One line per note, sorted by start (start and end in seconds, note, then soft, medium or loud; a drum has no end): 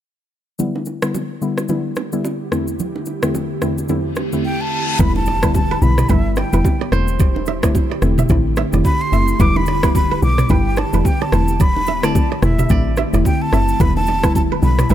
0.59 0.99 D3 medium
0.59 4.96 D3 medium
0.59 0.99 G3 medium
0.59 2.50 G3 medium
0.59 0.99 B3 medium
0.59 2.50 B3 medium
0.59 4.95 E4 medium
0.59 0.99 E4 loud
0.59 4.96 G4 medium
0.59 low conga medium
0.59 shaker medium
0.76 low bongo medium
0.85 low bongo soft
0.85 shaker medium
1.02 1.22 D3 medium
1.02 1.22 G3 medium
1.02 1.22 B3 medium
1.02 1.22 E4 medium
1.02 cross-stick loud
1.02 shaker medium
1.14 high bongo medium
1.14 low conga medium
1.14 shaker medium
1.42 1.63 D3 medium
1.42 1.63 G3 medium
1.42 1.64 B3 medium
1.42 1.64 E4 medium
1.42 shaker soft
1.58 cross-stick medium
1.58 high bongo soft
1.58 shaker medium
1.68 1.91 D3 medium
1.68 1.91 G3 medium
1.68 1.91 B3 medium
1.68 1.91 E4 loud
1.68 low bongo medium
1.68 low conga medium
1.68 shaker medium
1.96 cross-stick medium
1.96 high bongo soft
1.96 low bongo medium
1.96 shaker soft
2.12 2.32 D3 medium
2.12 2.32 G3 medium
2.12 2.32 B3 medium
2.12 2.32 E4 medium
2.12 shaker medium
2.24 high bongo medium
2.24 shaker medium
2.52 2.73 E2 medium
2.52 4.97 E2 medium
2.52 2.73 D3 medium
2.52 2.74 A3 medium
2.52 4.97 A3 medium
2.52 4.97 C4 medium
2.52 2.74 C4 medium
2.52 2.74 E4 medium
2.52 cross-stick medium
2.52 shaker soft
2.68 shaker medium
2.79 low conga medium
2.79 shaker medium
2.96 low bongo medium
3.06 low bongo medium
3.06 shaker medium
3.23 3.42 E2 medium
3.23 3.42 D3 medium
3.23 3.42 A3 medium
3.23 3.42 C4 medium
3.23 3.42 E4 medium
3.23 cross-stick loud
3.23 shaker medium
3.35 high bongo medium
3.35 low conga medium
3.35 shaker medium
3.62 3.84 E2 medium
3.62 3.84 D3 medium
3.62 3.84 A3 medium
3.62 3.84 C4 medium
3.62 3.84 E4 medium
3.62 cross-stick medium
3.62 shaker medium
3.78 high bongo soft
3.78 shaker medium
3.88 4.11 E2 medium
3.88 4.11 D3 medium
3.88 4.11 A3 medium
3.88 4.11 C4 medium
3.88 4.11 E4 loud
3.88 reverse cymbal medium
3.88 low bongo medium
3.88 low conga medium
3.88 shaker medium
4.16 cross-stick medium
4.16 high bongo soft
4.16 low bongo medium
4.16 shaker soft
4.32 4.44 E2 medium
4.32 4.44 D3 medium
4.32 4.44 A3 medium
4.32 4.45 C4 medium
4.32 4.45 E4 medium
4.32 shaker medium
4.45 4.62 G5 medium
4.61 5.02 A5 loud
4.99 5.78 E1 loud
4.99 5.39 D3 medium
4.99 14.95 D3 medium
4.99 6.90 G3 medium
4.99 5.39 G3 medium
4.99 6.90 B3 medium
4.99 5.39 B3 medium
4.99 11.28 E4 medium
4.99 5.39 E4 loud
4.99 14.95 G4 medium
4.99 5.10 B4 medium
4.99 5.15 B5 loud
4.99 kick loud
4.99 impact medium
4.99 low conga medium
4.99 shaker medium
5.16 5.52 A5 loud
5.16 low bongo medium
5.26 5.38 D5 medium
5.26 low bongo medium
5.26 shaker medium
5.43 5.62 D3 medium
5.43 5.62 G3 medium
5.43 5.63 B3 medium
5.43 5.63 E4 medium
5.43 5.51 B4 medium
5.43 kick medium
5.43 cross-stick loud
5.43 shaker medium
5.54 5.84 A5 loud
5.54 kick loud
5.54 high bongo medium
5.54 low conga medium
5.54 shaker medium
5.71 5.78 B4 medium
5.82 6.04 B1 loud
5.82 6.04 D3 medium
5.82 6.04 G3 medium
5.82 6.04 B3 medium
5.82 6.04 E4 medium
5.82 6.11 B5 loud
5.82 shaker medium
5.98 6.06 D5 medium
5.98 cross-stick medium
5.98 mid tom loud
5.98 shaker medium
6.09 6.44 G1 loud
6.09 6.31 D3 medium
6.09 6.31 G3 medium
6.09 6.31 B3 medium
6.09 6.31 E4 loud
6.09 6.20 B4 medium
6.09 6.39 E5 medium
6.09 kick loud
6.09 low bongo medium
6.09 low conga medium
6.09 shaker medium
6.36 6.48 D5 medium
6.36 6.92 G5 medium
6.36 cross-stick medium
6.36 low bongo medium
6.36 shaker medium
6.53 6.62 E1 medium
6.53 6.73 D3 medium
6.53 6.73 G3 medium
6.53 6.73 B3 medium
6.53 6.73 E4 medium
6.53 6.61 B4 medium
6.53 shaker medium
6.65 kick medium
6.65 high bongo medium
6.65 shaker medium
6.81 6.92 D5 medium
6.92 7.80 E1 loud
6.92 7.14 D3 medium
6.92 7.14 A3 medium
6.92 9.37 A3 medium
6.92 9.37 C4 medium
6.92 7.14 C4 medium
6.92 7.14 E4 medium
6.92 8.11 C5 medium
6.92 cross-stick medium
6.92 shaker soft
7.08 shaker medium
7.19 7.30 D5 medium
7.19 kick loud
7.19 low conga medium
7.19 shaker medium
7.36 low bongo medium
7.46 7.58 E5 medium
7.46 low bongo medium
7.46 shaker medium
7.63 7.83 D3 medium
7.63 7.83 A3 medium
7.63 7.83 C4 medium
7.63 7.83 E4 medium
7.63 7.71 D5 medium
7.63 kick medium
7.63 cross-stick loud
7.63 shaker medium
7.75 kick medium
7.75 high bongo medium
7.75 low conga medium
7.75 shaker medium
7.91 7.99 D5 medium
8.02 8.24 E1 loud
8.02 8.24 D3 medium
8.02 8.24 A3 medium
8.02 8.24 C4 medium
8.02 8.24 E4 medium
8.02 cross-stick medium
8.02 shaker medium
8.18 8.26 E5 medium
8.18 mid tom loud
8.18 shaker medium
8.29 8.64 A1 loud
8.29 8.51 D3 medium
8.29 8.52 A3 medium
8.29 8.52 C4 medium
8.29 8.52 E4 loud
8.29 8.40 D5 medium
8.29 kick loud
8.29 low bongo medium
8.29 low conga medium
8.29 shaker medium
8.56 8.68 E5 medium
8.56 cross-stick medium
8.56 low bongo medium
8.56 shaker medium
8.73 8.82 E1 medium
8.73 8.93 D3 medium
8.73 8.93 A3 medium
8.73 8.93 C4 medium
8.73 8.93 E4 medium
8.73 8.81 D5 medium
8.73 shaker medium
8.85 9.03 B5 loud
8.85 kick medium
8.85 high bongo medium
8.85 shaker medium
9.01 9.42 C6 loud
9.12 9.34 F#1 medium
9.12 9.34 D3 medium
9.12 9.34 A3 medium
9.12 9.34 C4 medium
9.12 9.34 E4 medium
9.12 9.23 E5 medium
9.12 shaker soft
9.28 shaker medium
9.40 10.18 E1 loud
9.40 9.79 D3 medium
9.40 9.79 G3 medium
9.40 11.31 G3 medium
9.40 9.80 B3 medium
9.40 11.31 B3 medium
9.40 9.80 E4 loud
9.40 9.51 B4 medium
9.40 9.58 D6 loud
9.40 kick loud
9.40 low conga medium
9.40 shaker medium
9.56 9.95 B5 loud
9.56 low bongo medium
9.66 9.78 D5 medium
9.66 low bongo medium
9.66 shaker medium
9.83 10.03 D3 medium
9.83 10.03 G3 medium
9.83 10.03 B3 medium
9.83 10.03 E4 medium
9.83 9.91 B4 medium
9.83 kick medium
9.83 cross-stick loud
9.83 shaker medium
9.95 10.21 B5 loud
9.95 kick loud
9.95 high bongo medium
9.95 low conga medium
9.95 shaker medium
10.11 10.19 B4 medium
10.22 10.44 B1 medium
10.22 10.44 D3 medium
10.22 10.44 G3 medium
10.22 10.44 B3 medium
10.22 10.44 E4 medium
10.22 10.52 D6 loud
10.22 shaker medium
10.38 10.46 D5 medium
10.38 cross-stick medium
10.38 mid tom loud
10.38 shaker medium
10.49 10.85 G1 loud
10.49 10.71 D3 medium
10.49 10.72 G3 medium
10.49 10.72 B3 medium
10.49 10.72 E4 loud
10.49 10.61 B4 medium
10.49 10.80 G5 loud
10.49 kick loud
10.49 low bongo medium
10.49 low conga medium
10.49 shaker medium
10.76 10.88 D5 medium
10.76 11.07 A5 medium
10.76 cross-stick medium
10.76 low bongo medium
10.76 shaker medium
10.93 11.03 E1 medium
10.93 11.13 D3 medium
10.93 11.13 G3 medium
10.93 11.13 B3 medium
10.93 11.13 E4 medium
10.93 11.01 B4 medium
10.93 shaker medium
11.05 11.23 G5 loud
11.05 kick medium
11.05 high bongo medium
11.05 shaker medium
11.22 11.29 D5 medium
11.22 11.62 A5 loud
11.32 12.20 E1 loud
11.32 11.54 D3 medium
11.32 11.54 A3 medium
11.32 13.78 A3 medium
11.32 11.54 C4 medium
11.32 13.78 C4 medium
11.32 14.95 E4 medium
11.32 11.54 E4 medium
11.32 11.43 C5 medium
11.32 cross-stick loud
11.32 shaker soft
11.48 shaker medium
11.60 11.71 D5 medium
11.60 12.06 B5 loud
11.60 kick loud
11.60 low conga medium
11.60 shaker medium
11.76 low bongo medium
11.86 12.04 E5 medium
11.86 low bongo medium
11.86 shaker medium
12.03 12.23 D3 medium
12.03 12.23 A3 medium
12.03 12.23 C4 medium
12.03 12.23 E4 medium
12.03 12.31 D5 medium
12.03 12.43 A5 medium
12.03 cross-stick loud
12.03 shaker medium
12.15 kick loud
12.15 high bongo medium
12.15 low conga medium
12.15 shaker medium
12.32 12.39 D5 medium
12.42 12.65 E1 loud
12.42 12.64 D3 medium
12.42 12.64 A3 medium
12.42 12.64 C4 medium
12.42 12.64 E4 medium
12.42 12.95 E5 medium
12.42 cross-stick medium
12.42 mid tom medium
12.42 shaker medium
12.58 12.70 E5 medium
12.58 mid tom loud
12.58 high bongo soft
12.58 shaker medium
12.69 13.05 A1 medium
12.69 12.92 D3 medium
12.69 12.92 A3 medium
12.69 12.92 C4 medium
12.69 12.92 E4 loud
12.69 13.14 D5 medium
12.69 kick loud
12.69 low bongo medium
12.69 low conga medium
12.69 shaker medium
12.96 13.08 E5 medium
12.96 cross-stick medium
12.96 high bongo medium
12.96 low bongo medium
12.96 shaker medium
13.13 13.23 E1 loud
13.13 13.33 D3 medium
13.13 13.33 A3 medium
13.13 13.33 C4 medium
13.13 13.33 E4 medium
13.13 13.22 D5 medium
13.13 shaker medium
13.25 13.43 G5 loud
13.25 kick medium
13.25 high bongo medium
13.25 shaker medium
13.42 13.82 A5 loud
13.52 13.75 F#1 medium
13.52 13.74 D3 medium
13.52 13.74 A3 medium
13.52 13.74 C4 medium
13.52 13.74 E4 medium
13.52 13.63 E5 medium
13.52 cross-stick medium
13.52 shaker soft
13.68 shaker medium
13.80 14.59 E1 loud
13.80 14.20 D3 medium
13.80 14.20 G3 medium
13.80 14.95 G3 medium
13.80 14.95 B3 medium
13.80 14.20 B3 medium
13.80 14.20 E4 loud
13.80 13.91 B4 medium
13.80 13.96 B5 loud
13.80 kick loud
13.80 low conga medium
13.80 shaker medium
13.96 14.33 A5 loud
13.96 low bongo medium
14.06 14.18 D5 medium
14.06 low bongo medium
14.06 shaker medium
14.23 14.43 D3 medium
14.23 14.43 G3 medium
14.23 14.43 B3 medium
14.23 14.43 E4 medium
14.23 14.32 B4 medium
14.23 kick medium
14.23 cross-stick loud
14.23 shaker medium
14.35 14.42 A5 loud
14.35 kick medium
14.35 high bongo medium
14.35 low conga medium
14.35 shaker medium
14.52 14.59 B4 medium
14.62 14.85 B1 loud
14.62 14.84 D3 medium
14.62 14.84 G3 medium
14.62 14.84 B3 medium
14.62 14.84 E4 medium
14.62 14.92 B5 loud
14.62 shaker medium
14.78 14.87 D5 medium
14.78 cross-stick loud
14.78 mid tom loud
14.78 shaker medium
14.89 14.95 G1 loud
14.89 14.95 D3 medium
14.89 14.95 G3 medium
14.89 14.95 B3 medium
14.89 14.95 E4 loud
14.89 14.95 B4 medium
14.89 14.95 E5 loud
14.89 kick loud
14.89 low bongo medium
14.89 low conga medium
14.89 shaker medium